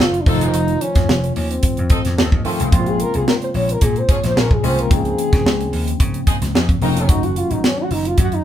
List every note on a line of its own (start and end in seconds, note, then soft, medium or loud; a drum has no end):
0.00 0.19 F#1 medium
0.00 0.26 D#3 medium
0.00 0.12 F#3 medium
0.00 0.28 F#3 medium
0.00 0.27 A3 medium
0.00 0.28 C#4 medium
0.00 0.12 D#4 medium
0.00 0.23 F4 loud
0.00 0.29 F#4 medium
0.00 0.12 A4 medium
0.00 snare loud
0.14 closed hi-hat soft
0.22 0.29 D4 medium
0.26 0.46 F1 medium
0.26 1.17 D#3 medium
0.26 1.17 F3 medium
0.26 0.63 F3 loud
0.26 1.17 A3 medium
0.26 0.83 D#4 loud
0.26 0.63 D#4 medium
0.26 1.18 F4 medium
0.26 0.63 A4 loud
0.26 1.17 C5 medium
0.26 kick loud
0.26 open hi-hat medium
0.41 closed hi-hat medium
0.54 0.74 F1 loud
0.54 closed hi-hat medium
0.68 closed hi-hat soft
0.81 1.36 C#4 loud
0.81 closed hi-hat medium
0.95 1.05 F2 medium
0.95 kick loud
0.95 snare soft
0.95 closed hi-hat soft
1.09 1.28 F1 loud
1.09 snare loud
1.24 closed hi-hat soft
1.36 1.56 D#2 medium
1.36 1.53 C#4 medium
1.36 open hi-hat medium
1.51 2.45 C4 medium
1.51 closed hi-hat medium
1.63 kick medium
1.63 closed hi-hat medium
1.77 1.87 F2 loud
1.77 closed hi-hat soft
1.90 2.00 F3 medium
1.90 2.00 D#4 medium
1.90 2.00 A4 medium
1.90 kick loud
1.90 closed hi-hat medium
2.05 2.15 F2 loud
2.05 snare soft
2.05 closed hi-hat medium
2.17 2.29 D#2 medium
2.17 2.30 F3 medium
2.17 2.30 D#4 medium
2.17 2.30 A4 medium
2.17 snare loud
2.32 2.42 D#2 medium
2.32 kick medium
2.44 2.68 D#3 medium
2.44 2.68 F3 medium
2.44 2.81 F3 medium
2.44 2.68 A3 medium
2.44 2.68 C4 medium
2.44 2.81 C#4 loud
2.44 2.68 F4 medium
2.44 2.81 A4 loud
2.44 open hi-hat medium
2.60 2.69 C2 medium
2.60 closed hi-hat medium
2.72 3.03 A#1 loud
2.72 3.63 C#3 medium
2.72 3.63 G#3 medium
2.72 3.63 A#3 medium
2.72 3.63 C4 medium
2.72 3.64 F4 medium
2.72 2.91 F4 loud
2.72 kick loud
2.72 closed hi-hat medium
2.86 3.03 G#4 medium
2.86 closed hi-hat soft
3.00 3.18 A#4 loud
3.00 closed hi-hat medium
3.14 3.24 C2 medium
3.14 3.28 G#4 medium
3.14 closed hi-hat soft
3.28 3.35 A#4 loud
3.28 snare loud
3.42 3.49 C5 loud
3.42 closed hi-hat soft
3.54 3.74 A#1 loud
3.54 3.74 C#5 loud
3.54 open hi-hat medium
3.69 3.86 A#4 loud
3.69 closed hi-hat medium
3.81 4.01 A#2 loud
3.81 4.00 G#4 loud
3.81 kick medium
3.81 closed hi-hat loud
3.96 4.13 C5 loud
3.96 closed hi-hat soft
4.09 4.19 F3 medium
4.09 4.19 C#4 medium
4.09 4.18 G#4 loud
4.09 4.25 C#5 loud
4.09 kick medium
4.09 closed hi-hat medium
4.24 4.33 A#1 loud
4.24 4.40 C5 loud
4.24 snare soft
4.24 closed hi-hat medium
4.36 4.56 A#1 medium
4.36 4.49 F3 medium
4.36 4.49 C#4 medium
4.36 4.49 G#4 medium
4.36 4.55 A#4 loud
4.36 snare loud
4.51 4.65 G#4 medium
4.51 kick medium
4.63 4.83 C2 medium
4.63 4.86 C#3 medium
4.63 4.81 F3 medium
4.63 4.86 G#3 medium
4.63 4.86 A#3 medium
4.63 4.87 C4 medium
4.63 4.81 C#4 medium
4.63 4.87 F4 medium
4.63 4.81 G#4 loud
4.63 4.82 C5 loud
4.63 open hi-hat medium
4.79 4.92 A#4 medium
4.79 closed hi-hat medium
4.90 5.11 C#2 medium
4.90 5.81 C#3 medium
4.90 5.81 F3 medium
4.90 5.81 A#3 medium
4.90 5.82 C4 medium
4.90 5.82 D#4 medium
4.90 5.97 G#4 loud
4.90 kick loud
4.90 closed hi-hat medium
5.05 closed hi-hat soft
5.18 closed hi-hat medium
5.33 5.42 C#3 loud
5.33 kick loud
5.33 snare soft
5.33 closed hi-hat soft
5.45 5.65 C#2 loud
5.45 snare loud
5.61 closed hi-hat soft
5.72 5.92 D#2 medium
5.72 open hi-hat medium
5.88 closed hi-hat medium
6.00 6.20 C#3 loud
6.00 kick medium
6.00 closed hi-hat medium
6.14 closed hi-hat soft
6.27 6.36 F3 medium
6.27 6.37 D#4 medium
6.27 6.36 G#4 loud
6.27 kick medium
6.27 closed hi-hat medium
6.42 6.51 C#2 loud
6.42 snare soft
6.42 closed hi-hat medium
6.54 6.74 F2 loud
6.54 6.67 F3 medium
6.54 6.67 D#4 medium
6.54 6.67 G#4 medium
6.54 snare loud
6.69 kick medium
6.69 closed hi-hat soft
6.81 7.09 F1 medium
6.81 7.04 C#3 medium
6.81 7.04 F3 medium
6.81 7.18 F#3 loud
6.81 7.05 A#3 medium
6.81 7.05 C4 medium
6.81 7.05 D#4 medium
6.81 7.18 D#4 loud
6.81 6.89 D#4 medium
6.81 7.18 A#4 loud
6.81 open hi-hat medium
6.97 7.12 C#4 medium
6.97 closed hi-hat medium
7.08 7.39 F#1 loud
7.08 7.99 D#3 medium
7.08 7.99 F#3 medium
7.08 7.99 A3 medium
7.08 8.00 C#4 medium
7.08 7.26 D#4 loud
7.08 8.00 F#4 medium
7.08 kick loud
7.08 closed hi-hat medium
7.23 7.39 F#4 medium
7.23 closed hi-hat soft
7.36 7.54 F4 medium
7.36 closed hi-hat medium
7.50 7.60 G#1 medium
7.50 7.67 D#4 medium
7.50 closed hi-hat soft
7.64 7.81 C#4 loud
7.64 snare loud
7.79 7.94 F#4 loud
7.90 8.10 F#1 medium
7.90 8.09 D#4 medium
7.90 open hi-hat medium
8.05 8.19 F4 medium
8.05 closed hi-hat medium
8.18 8.38 F#2 loud
8.18 8.36 F#4 loud
8.18 kick medium
8.18 closed hi-hat medium
8.32 8.44 D#4 loud
8.32 closed hi-hat soft